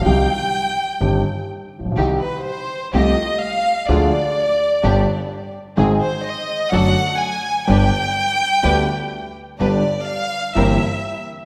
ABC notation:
X:1
M:4/4
L:1/16
Q:1/4=126
K:Cm
V:1 name="Violin section"
g12 z4 | z2 =B2 c4 e4 f4 | d12- d2 z2 | z2 c2 e4 ^f4 a4 |
g12- g2 z2 | d4 f4 =e6 z2 |]
V:2 name="String section"
z16 | [CEG]2 z6 [=A,FG]2 z6 | [A,DF]2 z6 [=B,DG]2 z6 | [CEA]2 z6 [D^F=A]2 z6 |
[DG=B]2 z6 [DGB]2 z6 | [DG=B]2 z6 [C=E_B]2 z6 |]
V:3 name="Grand piano" clef=bass
[C,,C,E,G,CG]2 z6 [G,,,G,,E,G,CG]2 z4 z/2 =A,,,/2 B,,,/2 =B,,,/2 | [C,,C,E,G,CG]2 z6 [C,,C,F,=A,CG]2 z6 | [D,,D,F,A,DA]2 z6 [G,,,G,,D,G,=B,G]2 z6 | [A,,,A,,E,A,CA]2 z6 [^F,,D,^F,=A,^F]2 z6 |
[G,,,G,,D,G,=B,G]2 z6 [D,,D,G,B,G]2 z6 | [G,,,G,,D,G,=B,G]2 z6 [G,,,G,,=E,_B,CG]2 z6 |]
V:4 name="Upright bass" clef=bass
C,,3/2 z6 z/2 G,,,3/2 z4 z =A,,,/2 B,,,/2 =B,,,/2 | C,,3/2 z6 z/2 C,,3/2 z6 z/2 | D,,3/2 z6 z/2 G,,,3/2 z6 z/2 | A,,,3/2 z6 z/2 ^F,,,3/2 z6 z/2 |
G,,,3/2 z6 z/2 D,,3/2 z6 z/2 | G,,,3/2 z6 z/2 G,,,3/2 z6 z/2 |]